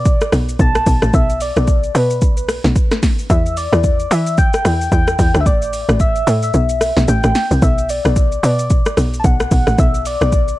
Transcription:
0.00 0.17 B2 loud
0.00 0.29 D5 loud
0.05 kick loud
0.05 shaker medium
0.21 cross-stick loud
0.21 shaker medium
0.32 0.57 B1 medium
0.32 cross-stick loud
0.32 open hi-hat medium
0.32 shaker medium
0.49 shaker medium
0.59 0.84 B1 loud
0.59 1.16 A5 loud
0.59 kick loud
0.59 shaker medium
0.75 cross-stick loud
0.75 shaker medium
0.86 1.01 B1 loud
0.86 kick loud
0.86 open hi-hat medium
0.86 shaker loud
1.02 1.12 A1 medium
1.02 cross-stick loud
1.02 shaker soft
1.14 1.52 B1 loud
1.14 1.41 E5 loud
1.14 kick loud
1.14 shaker medium
1.30 shaker medium
1.41 1.92 D5 medium
1.41 open hi-hat medium
1.41 shaker medium
1.56 1.91 B1 medium
1.56 cross-stick loud
1.56 shaker soft
1.67 kick loud
1.67 shaker medium
1.83 shaker soft
1.95 2.23 B2 loud
1.95 2.45 B4 medium
1.95 open hi-hat medium
1.95 shaker loud
2.10 shaker medium
2.21 2.60 B1 loud
2.21 kick loud
2.21 shaker medium
2.37 shaker medium
2.49 cross-stick loud
2.49 open hi-hat medium
2.49 shaker medium
2.64 2.75 B1 medium
2.64 snare medium
2.64 shaker medium
2.76 kick loud
2.76 shaker medium
2.91 cross-stick loud
2.91 snare medium
2.91 shaker medium
3.03 kick loud
3.03 snare medium
3.03 open hi-hat medium
3.03 shaker loud
3.19 shaker medium
3.30 3.68 E2 loud
3.30 3.59 E5 loud
3.30 kick loud
3.30 shaker medium
3.46 shaker medium
3.57 4.13 D5 loud
3.57 open hi-hat medium
3.57 shaker medium
3.73 4.07 E2 loud
3.73 cross-stick loud
3.73 shaker soft
3.84 kick loud
3.84 shaker loud
4.00 shaker soft
4.11 4.49 E3 loud
4.11 4.40 E5 loud
4.11 open hi-hat medium
4.11 shaker loud
4.26 shaker medium
4.38 4.92 G5 loud
4.38 kick loud
4.38 shaker medium
4.53 cross-stick loud
4.53 shaker medium
4.65 4.89 E2 medium
4.65 cross-stick loud
4.65 open hi-hat medium
4.65 shaker medium
4.81 shaker medium
4.92 5.16 E2 medium
4.92 5.42 G5 loud
4.92 kick loud
4.92 shaker medium
5.07 cross-stick loud
5.07 shaker medium
5.19 5.33 E2 medium
5.19 kick loud
5.19 open hi-hat medium
5.19 shaker medium
5.35 5.48 D2 medium
5.35 cross-stick loud
5.35 shaker soft
5.41 5.48 E5 medium
5.46 5.84 A1 loud
5.46 6.02 D5 loud
5.46 kick loud
5.46 shaker medium
5.62 shaker medium
5.73 open hi-hat medium
5.73 shaker medium
5.89 6.23 A1 medium
5.89 cross-stick loud
5.89 shaker soft
6.00 6.43 E5 loud
6.00 kick loud
6.00 shaker medium
6.16 shaker soft
6.27 6.51 A2 loud
6.27 open hi-hat medium
6.27 shaker loud
6.43 7.11 E5 loud
6.43 shaker medium
6.54 6.92 B1 loud
6.54 shaker medium
6.69 shaker medium
6.81 cross-stick loud
6.81 open hi-hat medium
6.81 shaker medium
6.97 7.07 B1 medium
6.97 snare medium
6.97 shaker medium
7.08 7.22 A1 loud
7.08 7.64 G5 loud
7.08 shaker medium
7.24 7.34 A1 medium
7.24 cross-stick loud
7.24 shaker medium
7.35 snare medium
7.35 open hi-hat medium
7.35 shaker loud
7.51 7.61 C2 medium
7.51 shaker soft
7.62 8.00 B1 loud
7.62 7.92 E5 loud
7.62 kick loud
7.62 shaker medium
7.78 shaker medium
7.89 8.44 D5 medium
7.89 open hi-hat medium
7.89 shaker medium
8.05 8.39 B1 medium
8.05 cross-stick loud
8.05 shaker soft
8.16 kick loud
8.16 shaker medium
8.32 shaker soft
8.43 8.81 B2 loud
8.43 8.94 D5 medium
8.43 open hi-hat medium
8.43 shaker loud
8.59 shaker medium
8.70 kick loud
8.70 shaker medium
8.86 cross-stick loud
8.86 shaker medium
8.97 9.22 B1 medium
8.97 cross-stick loud
8.97 open hi-hat medium
8.97 shaker medium
9.14 shaker medium
9.20 9.27 A5 medium
9.24 9.49 B1 medium
9.24 9.81 F#5 loud
9.24 kick loud
9.24 shaker medium
9.40 cross-stick loud
9.40 shaker medium
9.51 9.65 B1 medium
9.51 kick loud
9.51 open hi-hat medium
9.51 shaker loud
9.67 9.77 A1 medium
9.67 cross-stick loud
9.67 shaker medium
9.78 10.17 B1 loud
9.78 10.08 E5 loud
9.78 kick loud
9.78 shaker medium
9.94 shaker medium
10.05 10.59 D5 medium
10.05 open hi-hat medium
10.05 shaker medium
10.21 10.56 B1 medium
10.21 cross-stick loud
10.21 shaker soft
10.32 kick loud
10.32 shaker medium
10.48 shaker soft

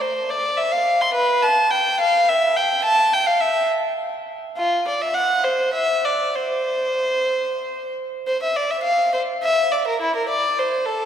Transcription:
0.01 0.29 C5 medium
0.30 0.57 D5 medium
0.57 0.71 E5 medium
0.72 1.00 F5 medium
1.01 1.14 C6 medium
1.14 1.42 B4 medium
1.42 1.71 A5 medium
1.70 1.99 G5 medium
2.00 2.28 F5 medium
2.29 2.56 E5 medium
2.56 2.84 G5 medium
2.84 3.11 A5 medium
3.13 3.27 G5 medium
3.26 3.40 F5 medium
3.40 3.68 E5 medium
4.57 4.86 F4 medium
4.88 5.01 D5 medium
5.01 5.15 E5 medium
5.14 5.44 F#5 medium
5.44 5.74 C5 medium
5.73 6.04 E5 medium
6.05 6.36 D5 medium
6.35 7.94 C5 medium
8.27 8.41 C5 medium
8.43 8.57 E5 medium
8.56 8.71 D5 medium
8.71 8.85 E5 medium
8.83 9.13 F5 medium
9.14 9.22 C5 medium
9.43 9.72 E5 medium
9.72 9.86 D5 medium
9.87 10.01 A#4 medium
10.01 10.15 E4 medium
10.16 10.30 A#4 medium
10.29 10.57 D5 medium
10.59 10.87 C5 medium
10.86 11.05 A4 medium

